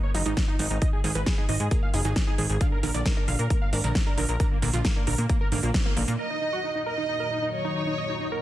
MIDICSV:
0, 0, Header, 1, 7, 480
1, 0, Start_track
1, 0, Key_signature, -6, "minor"
1, 0, Tempo, 447761
1, 877, Time_signature, 4, 2, 24, 8
1, 9025, End_track
2, 0, Start_track
2, 0, Title_t, "Violin section"
2, 0, Program_c, 0, 48
2, 6637, Note_on_c, 0, 75, 96
2, 7261, Note_off_c, 0, 75, 0
2, 7357, Note_on_c, 0, 75, 90
2, 7981, Note_off_c, 0, 75, 0
2, 8076, Note_on_c, 0, 73, 93
2, 8940, Note_off_c, 0, 73, 0
2, 9025, End_track
3, 0, Start_track
3, 0, Title_t, "Supersaw synth"
3, 0, Program_c, 1, 81
3, 34, Note_on_c, 1, 73, 93
3, 111, Note_off_c, 1, 73, 0
3, 156, Note_on_c, 1, 63, 63
3, 231, Note_off_c, 1, 63, 0
3, 275, Note_on_c, 1, 63, 62
3, 351, Note_off_c, 1, 63, 0
3, 516, Note_on_c, 1, 63, 64
3, 591, Note_off_c, 1, 63, 0
3, 635, Note_on_c, 1, 63, 62
3, 711, Note_off_c, 1, 63, 0
3, 753, Note_on_c, 1, 63, 65
3, 830, Note_off_c, 1, 63, 0
3, 873, Note_on_c, 1, 75, 99
3, 950, Note_off_c, 1, 75, 0
3, 996, Note_on_c, 1, 68, 63
3, 1071, Note_off_c, 1, 68, 0
3, 1115, Note_on_c, 1, 68, 64
3, 1191, Note_off_c, 1, 68, 0
3, 1234, Note_on_c, 1, 71, 92
3, 1310, Note_off_c, 1, 71, 0
3, 1355, Note_on_c, 1, 68, 65
3, 1431, Note_off_c, 1, 68, 0
3, 1476, Note_on_c, 1, 68, 63
3, 1551, Note_off_c, 1, 68, 0
3, 1595, Note_on_c, 1, 75, 93
3, 1671, Note_off_c, 1, 75, 0
3, 1715, Note_on_c, 1, 68, 66
3, 1791, Note_off_c, 1, 68, 0
3, 1836, Note_on_c, 1, 68, 65
3, 1911, Note_off_c, 1, 68, 0
3, 1957, Note_on_c, 1, 77, 94
3, 2032, Note_off_c, 1, 77, 0
3, 2075, Note_on_c, 1, 68, 62
3, 2151, Note_off_c, 1, 68, 0
3, 2196, Note_on_c, 1, 68, 64
3, 2271, Note_off_c, 1, 68, 0
3, 2435, Note_on_c, 1, 68, 63
3, 2511, Note_off_c, 1, 68, 0
3, 2554, Note_on_c, 1, 68, 63
3, 2631, Note_off_c, 1, 68, 0
3, 2674, Note_on_c, 1, 68, 65
3, 2750, Note_off_c, 1, 68, 0
3, 2794, Note_on_c, 1, 77, 100
3, 2871, Note_off_c, 1, 77, 0
3, 2915, Note_on_c, 1, 70, 62
3, 2991, Note_off_c, 1, 70, 0
3, 3035, Note_on_c, 1, 70, 63
3, 3111, Note_off_c, 1, 70, 0
3, 3156, Note_on_c, 1, 74, 93
3, 3231, Note_off_c, 1, 74, 0
3, 3275, Note_on_c, 1, 70, 63
3, 3351, Note_off_c, 1, 70, 0
3, 3393, Note_on_c, 1, 70, 63
3, 3470, Note_off_c, 1, 70, 0
3, 3514, Note_on_c, 1, 77, 94
3, 3591, Note_off_c, 1, 77, 0
3, 3634, Note_on_c, 1, 70, 66
3, 3711, Note_off_c, 1, 70, 0
3, 3755, Note_on_c, 1, 70, 63
3, 3831, Note_off_c, 1, 70, 0
3, 3875, Note_on_c, 1, 77, 96
3, 3951, Note_off_c, 1, 77, 0
3, 3996, Note_on_c, 1, 70, 64
3, 4071, Note_off_c, 1, 70, 0
3, 4115, Note_on_c, 1, 70, 63
3, 4191, Note_off_c, 1, 70, 0
3, 4358, Note_on_c, 1, 70, 64
3, 4432, Note_off_c, 1, 70, 0
3, 4476, Note_on_c, 1, 70, 64
3, 4552, Note_off_c, 1, 70, 0
3, 4597, Note_on_c, 1, 70, 66
3, 4672, Note_off_c, 1, 70, 0
3, 4716, Note_on_c, 1, 70, 98
3, 4792, Note_off_c, 1, 70, 0
3, 4836, Note_on_c, 1, 58, 64
3, 4912, Note_off_c, 1, 58, 0
3, 4956, Note_on_c, 1, 58, 64
3, 5032, Note_off_c, 1, 58, 0
3, 5077, Note_on_c, 1, 65, 93
3, 5152, Note_off_c, 1, 65, 0
3, 5195, Note_on_c, 1, 58, 65
3, 5271, Note_off_c, 1, 58, 0
3, 5316, Note_on_c, 1, 58, 63
3, 5391, Note_off_c, 1, 58, 0
3, 5434, Note_on_c, 1, 70, 97
3, 5511, Note_off_c, 1, 70, 0
3, 5556, Note_on_c, 1, 58, 67
3, 5631, Note_off_c, 1, 58, 0
3, 5677, Note_on_c, 1, 58, 63
3, 5752, Note_off_c, 1, 58, 0
3, 5796, Note_on_c, 1, 70, 92
3, 5872, Note_off_c, 1, 70, 0
3, 5917, Note_on_c, 1, 58, 63
3, 5992, Note_off_c, 1, 58, 0
3, 6036, Note_on_c, 1, 58, 64
3, 6111, Note_off_c, 1, 58, 0
3, 6276, Note_on_c, 1, 58, 63
3, 6351, Note_off_c, 1, 58, 0
3, 6396, Note_on_c, 1, 58, 65
3, 6472, Note_off_c, 1, 58, 0
3, 6515, Note_on_c, 1, 58, 64
3, 6591, Note_off_c, 1, 58, 0
3, 6636, Note_on_c, 1, 70, 94
3, 6711, Note_off_c, 1, 70, 0
3, 6755, Note_on_c, 1, 63, 60
3, 6831, Note_off_c, 1, 63, 0
3, 6876, Note_on_c, 1, 63, 60
3, 6951, Note_off_c, 1, 63, 0
3, 6997, Note_on_c, 1, 66, 88
3, 7072, Note_off_c, 1, 66, 0
3, 7118, Note_on_c, 1, 63, 59
3, 7192, Note_off_c, 1, 63, 0
3, 7237, Note_on_c, 1, 63, 63
3, 7312, Note_off_c, 1, 63, 0
3, 7356, Note_on_c, 1, 70, 89
3, 7431, Note_off_c, 1, 70, 0
3, 7477, Note_on_c, 1, 63, 62
3, 7552, Note_off_c, 1, 63, 0
3, 7597, Note_on_c, 1, 63, 60
3, 7672, Note_off_c, 1, 63, 0
3, 7716, Note_on_c, 1, 70, 92
3, 7792, Note_off_c, 1, 70, 0
3, 7837, Note_on_c, 1, 63, 62
3, 7912, Note_off_c, 1, 63, 0
3, 7956, Note_on_c, 1, 63, 58
3, 8031, Note_off_c, 1, 63, 0
3, 8196, Note_on_c, 1, 63, 60
3, 8271, Note_off_c, 1, 63, 0
3, 8316, Note_on_c, 1, 63, 59
3, 8391, Note_off_c, 1, 63, 0
3, 8435, Note_on_c, 1, 63, 61
3, 8511, Note_off_c, 1, 63, 0
3, 8556, Note_on_c, 1, 75, 95
3, 8631, Note_off_c, 1, 75, 0
3, 8677, Note_on_c, 1, 63, 61
3, 8752, Note_off_c, 1, 63, 0
3, 8797, Note_on_c, 1, 63, 62
3, 8872, Note_off_c, 1, 63, 0
3, 8917, Note_on_c, 1, 70, 91
3, 8992, Note_off_c, 1, 70, 0
3, 9025, End_track
4, 0, Start_track
4, 0, Title_t, "Analog synth pad"
4, 0, Program_c, 2, 89
4, 6634, Note_on_c, 2, 46, 75
4, 6634, Note_on_c, 2, 51, 69
4, 6634, Note_on_c, 2, 54, 71
4, 6634, Note_on_c, 2, 63, 70
4, 6634, Note_on_c, 2, 66, 84
4, 9025, Note_off_c, 2, 46, 0
4, 9025, Note_off_c, 2, 51, 0
4, 9025, Note_off_c, 2, 54, 0
4, 9025, Note_off_c, 2, 63, 0
4, 9025, Note_off_c, 2, 66, 0
4, 9025, End_track
5, 0, Start_track
5, 0, Title_t, "Synth pluck"
5, 0, Program_c, 3, 84
5, 157, Note_on_c, 3, 63, 100
5, 230, Note_off_c, 3, 63, 0
5, 276, Note_on_c, 3, 51, 101
5, 306, Note_off_c, 3, 51, 0
5, 516, Note_on_c, 3, 63, 77
5, 565, Note_off_c, 3, 63, 0
5, 636, Note_on_c, 3, 51, 77
5, 710, Note_off_c, 3, 51, 0
5, 875, Note_on_c, 3, 51, 101
5, 925, Note_off_c, 3, 51, 0
5, 1116, Note_on_c, 3, 51, 99
5, 1165, Note_off_c, 3, 51, 0
5, 1236, Note_on_c, 3, 51, 100
5, 1265, Note_off_c, 3, 51, 0
5, 1476, Note_on_c, 3, 63, 73
5, 1525, Note_off_c, 3, 63, 0
5, 1596, Note_on_c, 3, 51, 76
5, 1669, Note_off_c, 3, 51, 0
5, 1835, Note_on_c, 3, 58, 100
5, 1909, Note_off_c, 3, 58, 0
5, 2076, Note_on_c, 3, 63, 102
5, 2150, Note_off_c, 3, 63, 0
5, 2195, Note_on_c, 3, 51, 101
5, 2225, Note_off_c, 3, 51, 0
5, 2436, Note_on_c, 3, 63, 76
5, 2485, Note_off_c, 3, 63, 0
5, 2554, Note_on_c, 3, 51, 74
5, 2629, Note_off_c, 3, 51, 0
5, 2795, Note_on_c, 3, 50, 99
5, 2845, Note_off_c, 3, 50, 0
5, 3035, Note_on_c, 3, 50, 104
5, 3085, Note_off_c, 3, 50, 0
5, 3156, Note_on_c, 3, 50, 102
5, 3186, Note_off_c, 3, 50, 0
5, 3396, Note_on_c, 3, 62, 74
5, 3445, Note_off_c, 3, 62, 0
5, 3517, Note_on_c, 3, 50, 78
5, 3590, Note_off_c, 3, 50, 0
5, 3756, Note_on_c, 3, 58, 98
5, 3830, Note_off_c, 3, 58, 0
5, 3996, Note_on_c, 3, 62, 102
5, 4070, Note_off_c, 3, 62, 0
5, 4117, Note_on_c, 3, 50, 102
5, 4146, Note_off_c, 3, 50, 0
5, 4357, Note_on_c, 3, 62, 78
5, 4406, Note_off_c, 3, 62, 0
5, 4476, Note_on_c, 3, 50, 73
5, 4550, Note_off_c, 3, 50, 0
5, 4716, Note_on_c, 3, 50, 100
5, 4765, Note_off_c, 3, 50, 0
5, 4956, Note_on_c, 3, 50, 103
5, 5005, Note_off_c, 3, 50, 0
5, 5076, Note_on_c, 3, 50, 100
5, 5106, Note_off_c, 3, 50, 0
5, 5316, Note_on_c, 3, 62, 74
5, 5365, Note_off_c, 3, 62, 0
5, 5437, Note_on_c, 3, 50, 76
5, 5510, Note_off_c, 3, 50, 0
5, 5676, Note_on_c, 3, 58, 99
5, 5750, Note_off_c, 3, 58, 0
5, 5916, Note_on_c, 3, 50, 99
5, 5965, Note_off_c, 3, 50, 0
5, 6036, Note_on_c, 3, 53, 78
5, 6110, Note_off_c, 3, 53, 0
5, 6276, Note_on_c, 3, 58, 78
5, 6306, Note_off_c, 3, 58, 0
5, 6398, Note_on_c, 3, 50, 77
5, 6427, Note_off_c, 3, 50, 0
5, 9025, End_track
6, 0, Start_track
6, 0, Title_t, "Analog synth bass"
6, 0, Program_c, 4, 38
6, 155, Note_on_c, 4, 30, 90
6, 244, Note_off_c, 4, 30, 0
6, 276, Note_on_c, 4, 32, 81
6, 365, Note_off_c, 4, 32, 0
6, 635, Note_on_c, 4, 32, 93
6, 724, Note_off_c, 4, 32, 0
6, 755, Note_on_c, 4, 32, 82
6, 845, Note_off_c, 4, 32, 0
6, 1115, Note_on_c, 4, 32, 92
6, 1205, Note_off_c, 4, 32, 0
6, 1235, Note_on_c, 4, 32, 79
6, 1325, Note_off_c, 4, 32, 0
6, 1595, Note_on_c, 4, 32, 92
6, 1685, Note_off_c, 4, 32, 0
6, 1715, Note_on_c, 4, 44, 83
6, 1805, Note_off_c, 4, 44, 0
6, 2075, Note_on_c, 4, 30, 92
6, 2165, Note_off_c, 4, 30, 0
6, 2195, Note_on_c, 4, 32, 79
6, 2285, Note_off_c, 4, 32, 0
6, 2555, Note_on_c, 4, 32, 90
6, 2645, Note_off_c, 4, 32, 0
6, 2676, Note_on_c, 4, 32, 82
6, 2765, Note_off_c, 4, 32, 0
6, 3036, Note_on_c, 4, 34, 92
6, 3125, Note_off_c, 4, 34, 0
6, 3155, Note_on_c, 4, 34, 79
6, 3245, Note_off_c, 4, 34, 0
6, 3515, Note_on_c, 4, 34, 91
6, 3604, Note_off_c, 4, 34, 0
6, 3635, Note_on_c, 4, 46, 81
6, 3724, Note_off_c, 4, 46, 0
6, 3995, Note_on_c, 4, 32, 92
6, 4084, Note_off_c, 4, 32, 0
6, 4116, Note_on_c, 4, 34, 80
6, 4205, Note_off_c, 4, 34, 0
6, 4475, Note_on_c, 4, 34, 93
6, 4564, Note_off_c, 4, 34, 0
6, 4596, Note_on_c, 4, 34, 82
6, 4685, Note_off_c, 4, 34, 0
6, 4956, Note_on_c, 4, 34, 93
6, 5045, Note_off_c, 4, 34, 0
6, 5076, Note_on_c, 4, 34, 80
6, 5165, Note_off_c, 4, 34, 0
6, 5436, Note_on_c, 4, 34, 93
6, 5525, Note_off_c, 4, 34, 0
6, 5556, Note_on_c, 4, 46, 81
6, 5645, Note_off_c, 4, 46, 0
6, 5916, Note_on_c, 4, 32, 90
6, 6005, Note_off_c, 4, 32, 0
6, 6035, Note_on_c, 4, 34, 82
6, 6125, Note_off_c, 4, 34, 0
6, 6395, Note_on_c, 4, 34, 93
6, 6485, Note_off_c, 4, 34, 0
6, 6516, Note_on_c, 4, 46, 81
6, 6605, Note_off_c, 4, 46, 0
6, 9025, End_track
7, 0, Start_track
7, 0, Title_t, "Drums"
7, 156, Note_on_c, 9, 46, 100
7, 263, Note_off_c, 9, 46, 0
7, 276, Note_on_c, 9, 42, 60
7, 384, Note_off_c, 9, 42, 0
7, 396, Note_on_c, 9, 36, 112
7, 396, Note_on_c, 9, 38, 112
7, 396, Note_on_c, 9, 42, 63
7, 503, Note_off_c, 9, 38, 0
7, 503, Note_off_c, 9, 42, 0
7, 504, Note_off_c, 9, 36, 0
7, 635, Note_on_c, 9, 46, 102
7, 742, Note_off_c, 9, 46, 0
7, 756, Note_on_c, 9, 42, 63
7, 863, Note_off_c, 9, 42, 0
7, 876, Note_on_c, 9, 36, 112
7, 876, Note_on_c, 9, 42, 64
7, 983, Note_off_c, 9, 42, 0
7, 984, Note_off_c, 9, 36, 0
7, 1115, Note_on_c, 9, 46, 97
7, 1223, Note_off_c, 9, 46, 0
7, 1235, Note_on_c, 9, 42, 65
7, 1342, Note_off_c, 9, 42, 0
7, 1355, Note_on_c, 9, 38, 106
7, 1355, Note_on_c, 9, 42, 61
7, 1356, Note_on_c, 9, 36, 110
7, 1462, Note_off_c, 9, 38, 0
7, 1462, Note_off_c, 9, 42, 0
7, 1463, Note_off_c, 9, 36, 0
7, 1595, Note_on_c, 9, 46, 95
7, 1702, Note_off_c, 9, 46, 0
7, 1715, Note_on_c, 9, 42, 64
7, 1823, Note_off_c, 9, 42, 0
7, 1835, Note_on_c, 9, 42, 65
7, 1836, Note_on_c, 9, 36, 109
7, 1943, Note_off_c, 9, 36, 0
7, 1943, Note_off_c, 9, 42, 0
7, 2075, Note_on_c, 9, 46, 94
7, 2183, Note_off_c, 9, 46, 0
7, 2196, Note_on_c, 9, 42, 62
7, 2303, Note_off_c, 9, 42, 0
7, 2315, Note_on_c, 9, 38, 112
7, 2315, Note_on_c, 9, 42, 65
7, 2316, Note_on_c, 9, 36, 109
7, 2423, Note_off_c, 9, 36, 0
7, 2423, Note_off_c, 9, 38, 0
7, 2423, Note_off_c, 9, 42, 0
7, 2555, Note_on_c, 9, 46, 99
7, 2662, Note_off_c, 9, 46, 0
7, 2676, Note_on_c, 9, 42, 66
7, 2783, Note_off_c, 9, 42, 0
7, 2795, Note_on_c, 9, 42, 66
7, 2796, Note_on_c, 9, 36, 106
7, 2902, Note_off_c, 9, 42, 0
7, 2903, Note_off_c, 9, 36, 0
7, 3036, Note_on_c, 9, 46, 97
7, 3143, Note_off_c, 9, 46, 0
7, 3157, Note_on_c, 9, 42, 67
7, 3264, Note_off_c, 9, 42, 0
7, 3276, Note_on_c, 9, 36, 113
7, 3276, Note_on_c, 9, 38, 111
7, 3276, Note_on_c, 9, 42, 64
7, 3383, Note_off_c, 9, 36, 0
7, 3384, Note_off_c, 9, 38, 0
7, 3384, Note_off_c, 9, 42, 0
7, 3516, Note_on_c, 9, 46, 97
7, 3623, Note_off_c, 9, 46, 0
7, 3637, Note_on_c, 9, 42, 67
7, 3744, Note_off_c, 9, 42, 0
7, 3756, Note_on_c, 9, 36, 108
7, 3757, Note_on_c, 9, 42, 67
7, 3863, Note_off_c, 9, 36, 0
7, 3864, Note_off_c, 9, 42, 0
7, 3996, Note_on_c, 9, 46, 96
7, 4103, Note_off_c, 9, 46, 0
7, 4117, Note_on_c, 9, 42, 67
7, 4224, Note_off_c, 9, 42, 0
7, 4236, Note_on_c, 9, 36, 110
7, 4236, Note_on_c, 9, 38, 120
7, 4236, Note_on_c, 9, 42, 68
7, 4344, Note_off_c, 9, 36, 0
7, 4344, Note_off_c, 9, 38, 0
7, 4344, Note_off_c, 9, 42, 0
7, 4477, Note_on_c, 9, 46, 95
7, 4584, Note_off_c, 9, 46, 0
7, 4596, Note_on_c, 9, 42, 69
7, 4703, Note_off_c, 9, 42, 0
7, 4716, Note_on_c, 9, 36, 110
7, 4717, Note_on_c, 9, 42, 68
7, 4823, Note_off_c, 9, 36, 0
7, 4824, Note_off_c, 9, 42, 0
7, 4956, Note_on_c, 9, 46, 98
7, 5063, Note_off_c, 9, 46, 0
7, 5076, Note_on_c, 9, 42, 70
7, 5183, Note_off_c, 9, 42, 0
7, 5195, Note_on_c, 9, 38, 114
7, 5195, Note_on_c, 9, 42, 67
7, 5196, Note_on_c, 9, 36, 113
7, 5303, Note_off_c, 9, 38, 0
7, 5303, Note_off_c, 9, 42, 0
7, 5304, Note_off_c, 9, 36, 0
7, 5435, Note_on_c, 9, 46, 99
7, 5543, Note_off_c, 9, 46, 0
7, 5556, Note_on_c, 9, 42, 67
7, 5663, Note_off_c, 9, 42, 0
7, 5676, Note_on_c, 9, 36, 113
7, 5677, Note_on_c, 9, 42, 67
7, 5783, Note_off_c, 9, 36, 0
7, 5784, Note_off_c, 9, 42, 0
7, 5916, Note_on_c, 9, 46, 98
7, 6023, Note_off_c, 9, 46, 0
7, 6036, Note_on_c, 9, 42, 66
7, 6144, Note_off_c, 9, 42, 0
7, 6156, Note_on_c, 9, 36, 110
7, 6157, Note_on_c, 9, 38, 120
7, 6157, Note_on_c, 9, 42, 69
7, 6264, Note_off_c, 9, 36, 0
7, 6264, Note_off_c, 9, 38, 0
7, 6264, Note_off_c, 9, 42, 0
7, 6396, Note_on_c, 9, 46, 98
7, 6504, Note_off_c, 9, 46, 0
7, 6517, Note_on_c, 9, 42, 69
7, 6624, Note_off_c, 9, 42, 0
7, 9025, End_track
0, 0, End_of_file